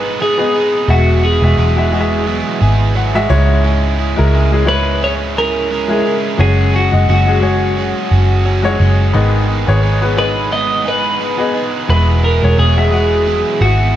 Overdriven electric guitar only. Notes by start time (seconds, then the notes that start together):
Already playing: G#3 B3 D#4 G#4
0.19 G#3 B3 D#4 G#4
0.54 G#3 B3 D#4 G#4
0.89 E3 F#3 B3 E4 G#4
1.23 B3 E4 G#4
1.58 F#3 B3 E4 G#4
1.93 B3 E4 G#4
2.27 E3 F#3 B3 E4 G#4
2.61 B3 E4 G#4
2.95 F#3 B3 E4 G#4
3.30 C#4 E4 G#4
3.65 C#3 G#3 C#4 E4 G#4
3.99 C#4 E4 G#4
4.34 G#3 C#4 E4 G#4
4.67 C#4 E4 G#4
5.02 C#3 G#3 C#4 E4 G#4
5.37 C#4 E4 G#4
5.71 G#3 C#4 E4 G#4
6.05 C#4 E4 G#4
6.40 F#3 C#4 F#4 G#4
6.73 C#4 F#4 G#4
7.08 F#3 C#4 F#4 G#4
7.42 C#4 F#4 G#4
7.77 F#3 C#4 F#4 G#4
8.11 C#4 F#4 G#4
8.45 F#3 C#4 F#4 G#4
8.79 C#4 F#4 G#4
9.14 G#2 D#3 G#3 B3 D#4 G#4
9.48 G#3 B3 D#4 G#4
9.82 G#3 B3 D#4 G#4
10.17 G#3 B3 D#4 G#4
10.52 G#2 D#3 G#3 B3 D#4 G#4
10.86 G#3 B3 D#4 G#4
11.20 G#3 B3 D#4 G#4
11.54 G#3 B3 D#4 G#4
11.89 E3 F#3 B3 E4 G#4
12.24 B3 E4 G#4
12.58 F#3 B3 E4 G#4
12.93 B3 E4 G#4
13.27 E3 F#3 B3 E4 G#4
13.61 B3 E4 G#4